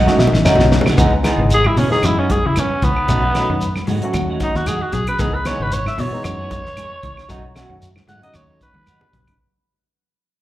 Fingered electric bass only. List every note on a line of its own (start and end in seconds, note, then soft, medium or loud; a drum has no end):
0.07 muted fingered electric bass stroke soft
0.18 0.30 B2 medium
0.33 0.53 A1 medium
0.60 0.80 B1 medium
0.98 1.29 C#2 medium
1.38 1.68 G#1 medium
1.77 1.88 B2 medium
2.03 2.44 F#2 medium
2.44 2.73 E2 medium
2.82 2.93 C#2 medium
3.09 3.40 B1 medium
3.50 3.79 F#2 medium
3.88 3.99 G#2 medium
4.14 4.45 D#2 loud
4.55 4.84 D#2 medium
4.93 5.04 B1 loud
5.19 5.50 C#2 medium
5.60 5.89 G#1 medium
5.99 6.10 B2 medium
6.25 6.65 F#2 loud
6.65 6.94 E2 medium
7.03 7.14 C#2 medium
7.29 7.61 B1 medium
7.70 7.99 F#2 medium
8.08 8.19 G#2 medium
8.35 8.66 D#2 loud
8.75 9.04 D#2 medium
9.13 9.24 B1 medium